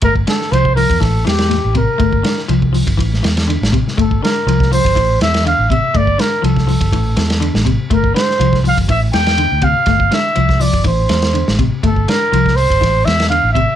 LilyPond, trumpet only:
\new Staff \with { instrumentName = "Trumpet" } { \time 4/4 \key g \dorian \tempo 4 = 122 bes'8 a'8 c''8 bes'8 a'8 g'4 bes'8~ | bes'4 r2. | a'8 bes'4 c''4 e''8 f''8 e''8 | d''8 bes'8 a'2~ a'8 r8 |
bes'8 c''4 f''8 e''8 g''4 f''8~ | f''8 e''4 d''8 c''4. r8 | a'8 bes'4 c''4 e''8 f''8 e''8 | }